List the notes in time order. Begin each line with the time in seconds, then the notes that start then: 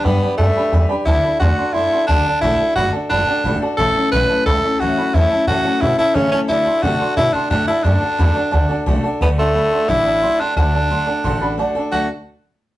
0.04 G2 G3 B3 D4 G4 B4 D5 G5 D6
0.22 D4 G4 B4 D5 G5 B5
0.38 F#2 G3 A3 D4 G4 D5 G5 A5
0.43 B4
0.56 D4 G4 B4 D5 G5 B5
0.72 E2 G3 D4 G4 B4 D5 G5 B5
0.89 D4 G4 B4 D5 G5 B5
1.06 D2 D3 A3 D4 E4 F#4 A4 F#5 A5
1.23 D4 F#4 A4 D5 F#5 B5, muted upright bass stroke
1.40 E2 D3 A3 D4 F#4 A4 D5 F#5 C6
1.58 D4 F#4 A4 D5 F#5 C6
1.73 F#2 A3 D4 E4 D5 F#5 C6
1.78 F#4 A4
1.92 F#4 A4 D5 F#5 C6
1.96 D4
2.07 D2 D3 A3 D4 F#4 D5 F#5 A5
2.11 A4
2.25 F#4 A4 D5 F#5 A5, muted upright bass stroke
2.29 D4
2.41 A1 D3 A3 D4 E4 F#4 D5 F#5 A5
2.46 A4
2.59 F#4 A4 D5 F#5 A5, muted upright bass stroke
2.63 D4
2.75 G1 D3 A3 D4 F#4 D5 F#5 B5
2.79 A4
2.92 F#4 A4 D5 F#5 A5, muted upright bass stroke
2.96 D4
3.09 F#1 A3 D4 F#4 D5 F#5 B5
3.14 A4
3.26 F#4 A4 D5 F#5 A5, muted upright bass stroke
3.30 D4
3.44 G#1 D3 A3 D4 F#4 A4 D5 F#5 B5
3.60 D4 F#4 A4 D5 F#5 A5, muted upright bass stroke
3.77 A1 A2 E3 A3 C#4 E4 A4 C#5 E5 A5
3.95 A3 C#4 E4 A4 C#5 E5 A5, muted upright bass stroke
4.11 B1 A2 E3 A3 C#4 E4 A4 B4 C#5 E5 F#5
4.29 A3 C#4 E4 A4 C#5 E5 A5
4.46 C#2 A3 C#4 E4 A4 C#5 E5 B5
4.50 A4
4.63 C#4 E4 A4 C#5 E5 A5, muted upright bass stroke
4.67 A3
4.80 D2 A2 E3 A3 C#4 E4 F#4 A4 C#5 E5 A5
4.97 A3 C#4 E4 A4 C#5 E5 B5, muted upright bass stroke
5.14 E2 A2 E3 A3 C#4 E4 A4 C#5 E5 F#5
5.31 A3 C#4 E4 A4 C#5 E5 A5
5.47 A2 E3 A3 C#4 E4 F#4 A4 C#5 E5 A5
5.64 A3 C#4 E4 A4 C#5 E5 A5, muted upright bass stroke
5.81 B2 A3 C#4 E4 A4 C#5 E5 F#5
5.98 A3 C#4 E4 A4 C#5 A5, muted upright bass stroke
6.14 A2 C#3 E3 A3 C#4 E4 A4 A5
6.31 A3 C#4 E4 A4 C#5 E5 A5, muted upright bass stroke
6.48 D3 A3 D4 E4 F#4 A4 D5 F#5 A5
6.65 D4 F#4 A4 D5 F#5 C6, muted upright bass stroke
6.83 C3 D3 A3 D4 F#4 A4 D5 F#5 A5
6.99 D4 F#4 A4 D5 F#5 C6, muted upright bass stroke
7.16 B2 A3 D4 E4 F#4 A4 D5 F#5 A5
7.33 D4 F#4 A4 D5 F#5 C6, muted upright bass stroke
7.50 A2 D3 A3 D4 F#4 A4 D5 F#5 A5
7.66 D4 E4 F#4 A4 D5 F#5 A5, muted upright bass stroke
7.84 F#2 D3 A3 D4 F#4 A4 D5 F#5 A5
8.00 D4 F#4 A4 D5 F#5 A5
8.18 E2 D3 A3 D4 F#4 A4 D5 F#5 B5
8.34 D4 F#4 A4 D5 F#5 A5
8.51 D2 A3 D4 F#4 A4 D5 F#5 A5
8.69 D4 F#4 A4 D5 F#5 A5, muted upright bass stroke
8.86 C2 D3 A3 D4 F#4 A4 D5 F#5 A5
9.03 F#4 A4 D5 F#5 A5, muted upright bass stroke
9.07 D4
9.20 D2 D3 A3 B3 D4 F#4 A4 D5 F#5 A5
9.37 A3 D4 F#4 A4 D5 F#5 C6
9.54 A3 D4 F#4 A4 D5 F#5 B5
9.71 D4 F#4 A4 D5 F#5 C6, muted upright bass stroke
9.88 A1 D3 A3 D4 E4 F#4 A4 D5 F#5 B5
10.05 D4 F#4 A4 D5 F#5 B5
10.22 A3 D4 F#4 D5 F#5 C6
10.26 A4
10.39 D4 F#4 A4 D5 F#5 C6, muted upright bass stroke
10.56 D2 D3 A3 D4 F#4 A4 D5 F#5 A5
10.73 D4 F#4 A4 D5 A5
10.90 A3 D4 F#4 A4 D5 F#5 C6
11.06 D4 F#4 A4 D5 F#5 A5
11.24 A1 D3 A3 D4 F#4 A4 D5 F#5 C6
11.41 D4 F#4 A4 D5 F#5 B5
11.57 A3 D4 F#4 A4 D5 F#5 A5
11.75 D4 F#4 A4 D5 F#5 A5, muted upright bass stroke
11.91 D2 D3 A3 D4 F#4 A4 D5 F#5 A5